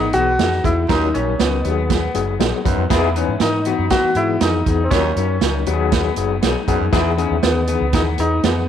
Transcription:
Already playing: clean electric guitar B3, grand piano D#4
0.13 fingered electric bass B1, tine electric piano E3 B3 D#4 G#4, grand piano F#4, closed hi-hat
0.39 fingered electric bass F2, tine electric piano E3 B3 D#4 G#4, clean electric guitar D#4, snare, closed hi-hat
0.52 snare
0.64 fingered electric bass E2, tine electric piano E3 B3 D#4 G#4, grand piano E4, kick, closed hi-hat
0.89 baritone saxophone D#2, fingered electric bass D#2, tine electric piano F#3 C#4 D#4 A#4, clean electric guitar D#4, grand piano D#4, kick, snare, closed hi-hat
1.14 fingered electric bass A#1, tine electric piano F#3 C#4 D#4 A#4, grand piano C#4, clean electric guitar C#4, closed hi-hat
1.39 fingered electric bass C#2, tine electric piano F#3 C#4 D#4 A#4, grand piano B3, clean electric guitar D#4, snare, closed hi-hat
1.64 fingered electric bass D#2, tine electric piano F#3 B3 D#4 G4, clean electric guitar B3, closed hi-hat
1.71 tine electric piano G#4
1.90 clean electric guitar B3, kick, snare, closed hi-hat
2.14 fingered electric bass F#1, tine electric piano F#3 B3 D#4 G#4, closed hi-hat
2.40 fingered electric bass A#1, tine electric piano F#3 B3 D#4 G#4, clean electric guitar D#4, snare, closed hi-hat
2.65 baritone saxophone F#2, fingered electric bass F#2, tine electric piano F#3 B3 D#4 B4, kick, closed hi-hat
2.77 fingered electric bass F2
2.90 fingered electric bass E2, baritone saxophone E2, tine electric piano E3 B3 D#4 G#4, clean electric guitar E4, kick, snare, closed hi-hat
3.16 tine electric piano E3 B3 D#4 B4, clean electric guitar C#4, closed hi-hat
3.28 fingered electric bass G#2
3.40 fingered electric bass G#2, tine electric piano E3 B3 D#4 A#4, clean electric guitar D#4, grand piano D#4, snare, closed hi-hat
3.65 tine electric piano E3 B3 D#4 F#4, clean electric guitar B3, closed hi-hat
3.78 fingered electric bass F#2
3.90 tine electric piano E3 B3 D#4 F#4, clean electric guitar B3, grand piano F#4, kick, snare, closed hi-hat
4.03 muted fingered electric bass stroke
4.15 fingered electric bass G#2, tine electric piano E3 B3 D#4 G#4, grand piano E4, closed hi-hat
4.41 fingered electric bass F2, tine electric piano E3 B3 D#4 G#4, grand piano D#4, clean electric guitar D#4, snare, closed hi-hat
4.66 fingered electric bass E2, tine electric piano E3 B3 D#4 G#4, kick, closed hi-hat
4.84 grand piano C4
4.91 baritone saxophone D#2, fingered electric bass D#2, tine electric piano F#3 C#4 D#4 A#4, grand piano C#4, clean electric guitar D#4, kick, snare, closed hi-hat
5.16 fingered electric bass F#2, tine electric piano F#3 C#4 D#4 A#4, clean electric guitar C#4, closed hi-hat
5.41 fingered electric bass C#2, tine electric piano F#3 C#4 D#4 A#4, clean electric guitar D#4, snare, closed hi-hat
5.66 fingered electric bass D#2, tine electric piano F#3 B3 D#4 G4, clean electric guitar B3, closed hi-hat
5.73 tine electric piano G#4
5.92 clean electric guitar B3, kick, snare, closed hi-hat
6.16 fingered electric bass F#1, tine electric piano F#3 B3 D#4 G#4, closed hi-hat
6.42 fingered electric bass B1, tine electric piano F#3 B3 D#4 G#4, clean electric guitar D#4, snare, closed hi-hat
6.67 baritone saxophone F#2, fingered electric bass F#2, tine electric piano F#3 B3 D#4 G#4, kick, closed hi-hat
6.80 fingered electric bass F2
6.93 fingered electric bass E2, baritone saxophone E2, tine electric piano E3 B3 D#4 G#4, clean electric guitar E4, kick, snare, closed hi-hat
7.17 tine electric piano E3 B3 D#4 G#4, clean electric guitar C#4, closed hi-hat
7.30 fingered electric bass D#2
7.43 fingered electric bass D#2, tine electric piano E3 B3 D#4 G#4, grand piano B3, clean electric guitar D#4, snare, closed hi-hat
7.67 tine electric piano E3 B3 D#4 G#4, clean electric guitar B3, closed hi-hat
7.81 fingered electric bass C#2
7.93 fingered electric bass D#2, tine electric piano E3 B3 D#4 G#4, clean electric guitar B3, grand piano D#4, kick, snare, closed hi-hat
8.18 fingered electric bass E2, tine electric piano E3 B3 D#4 G#4, grand piano D#4, closed hi-hat
8.43 fingered electric bass F2, tine electric piano E3 B3 D#4 G#4, grand piano B3, clean electric guitar D#4, snare, closed hi-hat

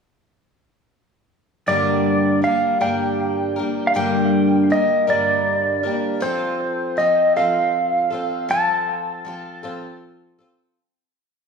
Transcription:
1.67 twelve-string acoustic guitar G2 D3 G3 A#3 D4 A#4, electric slide guitar D5
2.42 twelve-string acoustic guitar G3 A#3 D4 A#4, electric slide guitar F5
2.81 twelve-string acoustic guitar G2 D3 G3 A#3 D4 A#4, electric slide guitar G5
3.56 twelve-string acoustic guitar G3 A#3 D4 A#4
3.87 electric slide guitar F5
3.94 twelve-string acoustic guitar G2 D3 G3 A#3 D4 A#4, electric slide guitar G5
4.70 twelve-string acoustic guitar G3 A#3 A#4, electric slide guitar D#5
5.07 twelve-string acoustic guitar G2 D3 G3 A#3 D4 A#4, electric slide guitar D5
5.83 twelve-string acoustic guitar G3 A#3 D4 A#4
6.20 twelve-string acoustic guitar F3 C4 F4 A4, electric slide guitar C5
6.97 twelve-string acoustic guitar F3 C4 F4 A4, electric slide guitar D#5
7.36 twelve-string acoustic guitar F3 C4 F4 A4, electric slide guitar F5
8.10 twelve-string acoustic guitar C4 F4 A4
8.49 twelve-string acoustic guitar F3 C4 F4 A4, electric slide guitar A5
9.25 twelve-string acoustic guitar F3 C4 F4 A4
9.63 twelve-string acoustic guitar F3 C4 F4 A4
10.39 twelve-string acoustic guitar C4 F4 A4

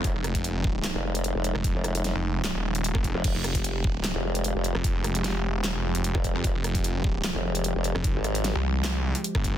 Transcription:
Already playing: supersaw synth F3 G#3 D#4
0.04 wobble bass F1, kick, closed hi-hat
0.15 detuned saw bass F1
0.24 cross-stick, closed hi-hat
0.35 kick, closed hi-hat
0.44 closed hi-hat
0.64 kick
0.84 snare, clap, closed hi-hat
0.95 wobble bass F1
1.15 closed hi-hat
1.24 closed hi-hat
1.35 wobble bass F1
1.44 closed hi-hat
1.55 detuned saw bass F1, cross-stick
1.64 kick, closed hi-hat
1.75 wobble bass F1
1.84 cross-stick, closed hi-hat
1.95 closed hi-hat
2.04 snare, closed hi-hat
2.15 detuned saw bass F1
2.44 snare, clap, closed hi-hat
2.55 detuned saw bass D#1
2.75 closed hi-hat
2.84 closed hi-hat
2.95 detuned saw bass F1, kick, cross-stick
3.04 kick, closed hi-hat
3.15 wobble bass F1
3.24 wobble bass F1, supersaw synth G4, kick, closed hi-hat, crash
3.35 detuned saw bass F1
3.44 cross-stick, closed hi-hat
3.55 kick, closed hi-hat
3.64 closed hi-hat
3.84 kick
4.04 snare, clap, closed hi-hat
4.15 wobble bass F1
4.35 closed hi-hat
4.44 closed hi-hat
4.55 wobble bass F1
4.64 closed hi-hat
4.75 detuned saw bass F1, cross-stick
4.84 kick, closed hi-hat
4.95 detuned saw bass F1
5.04 cross-stick, closed hi-hat
5.15 closed hi-hat
5.24 snare, closed hi-hat
5.50 detuned saw bass E1
5.64 snare, clap, closed hi-hat
5.75 detuned saw bass F1
5.95 detuned saw bass F1, closed hi-hat
6.04 closed hi-hat
6.15 wobble bass F1, kick, cross-stick
6.24 kick, closed hi-hat
6.35 detuned saw bass F2
6.44 wobble bass F1, kick, closed hi-hat
6.55 detuned saw bass F1
6.64 cross-stick, closed hi-hat
6.75 kick, closed hi-hat
6.84 closed hi-hat
7.04 kick
7.24 snare, clap, closed hi-hat
7.35 wobble bass F1
7.55 closed hi-hat
7.64 closed hi-hat
7.75 wobble bass F1
7.84 closed hi-hat
7.95 detuned saw bass F1, cross-stick
8.04 kick, closed hi-hat
8.15 wobble bass G#1
8.24 cross-stick, closed hi-hat
8.35 closed hi-hat
8.44 snare, closed hi-hat
8.55 detuned saw bass C2
8.84 snare, clap, closed hi-hat
9.15 closed hi-hat
9.24 closed hi-hat
9.35 detuned saw bass G1, kick, cross-stick
9.44 kick, closed hi-hat

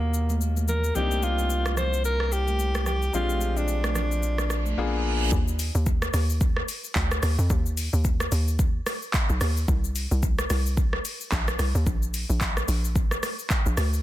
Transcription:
Already playing: sub bass D#2, grand piano B2 A#3 C#4 D#4 F#4, alto saxophone A#3
0.14 shaker
0.30 high conga, shaker
0.41 shaker
0.57 high conga, shaker
0.68 alto saxophone A#4, low conga, shaker
0.84 shaker
0.95 sub bass C2, grand piano A#3 C4 D4 D#4 G4, alto saxophone G4, low conga, shaker
1.11 high conga, shaker
1.23 alto saxophone F4, shaker
1.38 high conga, shaker
1.50 shaker
1.66 cross-stick, high conga, shaker
1.77 alto saxophone C5, cross-stick, low conga, shaker
1.93 shaker
2.05 alto saxophone A#4, shaker
2.20 cross-stick
2.32 alto saxophone G4, shaker
2.48 high conga, shaker
2.59 shaker
2.75 cross-stick, high conga, shaker
2.86 alto saxophone G4, cross-stick, low conga, shaker
3.02 shaker
3.13 sub bass A#1, grand piano G#3 C4 D4 F4 G4, alto saxophone F4, low conga, shaker
3.30 high conga, shaker
3.41 shaker
3.57 alto saxophone D4, high conga, shaker
3.68 shaker
3.84 cross-stick, high conga, shaker
3.95 cross-stick, low conga, shaker
4.12 shaker
4.23 reverse cymbal, shaker
4.38 cross-stick, shaker
4.50 cross-stick, shaker
4.66 high conga, shaker
4.77 sub bass A#1, grand piano A#3 B3 D4 F4 G#4
5.32 log drum bass D#2, kick, shaker
5.48 shaker
5.59 open hi-hat, shaker
5.75 log drum bass D#2, shaker
5.86 kick, shaker
6.02 cross-stick, shaker
6.14 log drum bass D#2, cross-stick, open hi-hat, shaker
6.30 shaker
6.41 kick, shaker
6.57 cross-stick
6.68 open hi-hat, shaker
6.84 shaker
6.95 log drum bass D2, kick, clap, shaker
7.11 cross-stick, shaker
7.23 log drum bass D#2, cross-stick, open hi-hat, shaker
7.39 log drum bass F2, shaker
7.50 log drum bass D#2, kick, shaker
7.66 shaker
7.77 open hi-hat, shaker
7.93 log drum bass D#2, shaker
8.04 kick, shaker
8.20 cross-stick, shaker
8.32 log drum bass D#2, open hi-hat, shaker
8.48 shaker
8.59 kick, shaker
8.86 cross-stick, open hi-hat, shaker
9.02 shaker
9.14 kick, clap, shaker
9.29 log drum bass B1, shaker
9.41 log drum bass D#2, cross-stick, open hi-hat, shaker
9.57 shaker
9.68 log drum bass C2, kick, shaker
9.84 shaker
9.96 open hi-hat, shaker
10.11 log drum bass C2, shaker
10.23 kick, shaker
10.39 cross-stick, shaker
10.50 log drum bass C2, cross-stick, open hi-hat, shaker
10.66 shaker
10.77 kick, shaker
10.93 cross-stick
11.05 open hi-hat, shaker
11.21 shaker
11.32 log drum bass A#1, kick, clap, shaker
11.48 cross-stick, shaker
11.59 log drum bass C2, cross-stick, open hi-hat, shaker
11.75 log drum bass D#2, shaker
11.87 log drum bass A#1, kick, shaker
12.03 shaker
12.14 open hi-hat, shaker
12.30 log drum bass A#1, shaker
12.41 kick, clap, shaker
12.57 cross-stick, shaker
12.68 log drum bass A#1, open hi-hat, shaker
12.84 shaker
12.96 kick, shaker
13.11 cross-stick, shaker
13.23 cross-stick, open hi-hat, shaker
13.39 shaker
13.50 kick, clap, shaker
13.66 log drum bass A#1, shaker
13.77 log drum bass D2, cross-stick, open hi-hat, shaker
13.93 shaker

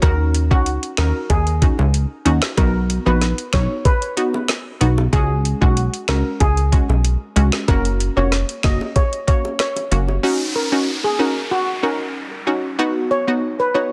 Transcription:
0.02 analog synth bass D#2, synth pluck C#4 D#4 F#4, steel pan A#4, kick, closed hi-hat, high bongo
0.34 closed hi-hat
0.51 analog synth bass C#2, synth pluck C#4 D#4 F#4, steel pan F#4, kick
0.66 closed hi-hat
0.83 closed hi-hat
0.97 analog synth bass D#2, synth pluck C#4 D#4 F#4, steel pan A#4, finger snap, snare, closed hi-hat, low bongo
1.30 analog synth bass D#2, steel pan G#4, kick, closed hi-hat, high bongo
1.47 closed hi-hat
1.62 synth pluck C#4 D#4 F#4, kick, closed hi-hat
1.79 analog synth bass C#2, high bongo
1.94 closed hi-hat
2.25 analog synth bass D#2, synth pluck C#4 D#4 F#4, closed hi-hat, low bongo
2.42 finger snap, snare, high bongo
2.57 analog synth bass B1, synth pluck B3 D#4 F#4, steel pan A#4, kick, closed hi-hat, high bongo
2.90 closed hi-hat
3.06 analog synth bass A#1, synth pluck B3 D#4 F#4, steel pan B4
3.21 snare, closed hi-hat
3.38 closed hi-hat
3.53 analog synth bass B1, synth pluck B3 D#4 F#4, steel pan C#5, finger snap, kick, snare, closed hi-hat, low bongo
3.85 steel pan B4, kick, closed hi-hat, high bongo
4.02 closed hi-hat
4.17 synth pluck B3 D#4 F#4, closed hi-hat
4.34 high bongo
4.48 finger snap, snare, closed hi-hat
4.81 analog synth bass B1, synth pluck B3 D#4 F#4, closed hi-hat, low bongo
4.98 high bongo
5.13 analog synth bass C#2, synth pluck G#3 C#4 F#4, steel pan G#4, kick, closed hi-hat, high bongo
5.45 closed hi-hat
5.61 analog synth bass B1, synth pluck G#3 C#4 F#4, steel pan F#4, kick
5.77 closed hi-hat
5.94 closed hi-hat
6.08 analog synth bass C#2, synth pluck G#3 C#4 F#4, steel pan A#4, finger snap, snare, closed hi-hat, low bongo
6.40 analog synth bass C#2, steel pan G#4, kick, closed hi-hat, high bongo
6.57 closed hi-hat
6.72 synth pluck G#3 C#4 F#4, kick, closed hi-hat
6.89 analog synth bass B1, high bongo
7.05 closed hi-hat
7.36 analog synth bass C#2, synth pluck G#3 C#4 F#4, closed hi-hat, low bongo
7.52 finger snap, snare, high bongo
7.68 analog synth bass F#1, synth pluck A#3 C#4 F#4, steel pan A#4, kick, closed hi-hat, high bongo
7.85 closed hi-hat
8.00 closed hi-hat
8.17 analog synth bass F1, synth pluck A#3 C#4 F#4, steel pan C#5
8.32 cross-stick, snare, closed hi-hat
8.49 closed hi-hat
8.63 analog synth bass F#1, synth pluck A#3 C#4 F#4, steel pan D#5, finger snap, kick, snare, closed hi-hat, high bongo, low bongo
8.81 high bongo
8.96 steel pan C#5, kick, closed hi-hat, high bongo
9.13 closed hi-hat
9.27 synth pluck A#3 C#4 F#4, steel pan C#5, kick, closed hi-hat
9.45 high bongo
9.59 steel pan C#5, finger snap, cross-stick, snare, closed hi-hat
9.76 closed hi-hat, high bongo
9.91 analog synth bass F#1, synth pluck A#3 C#4 F#4, closed hi-hat, low bongo
10.08 high bongo
10.23 synth pluck C#4 D#4 F#4, downlifter
10.56 steel pan A#4
10.72 synth pluck C#4 D#4 F#4
11.04 steel pan G#4
11.19 synth pluck C#4 D#4 F#4, steel pan A#4
11.51 steel pan F#4
11.83 synth pluck C#4 D#4 F#4, steel pan A#4
12.47 synth pluck C#4 D#4 F#4
12.79 synth pluck B3 D#4 F#4
13.11 steel pan C#5
13.28 synth pluck B3 D#4 F#4
13.60 steel pan B4
13.74 synth pluck B3 D#4 F#4, steel pan C#5

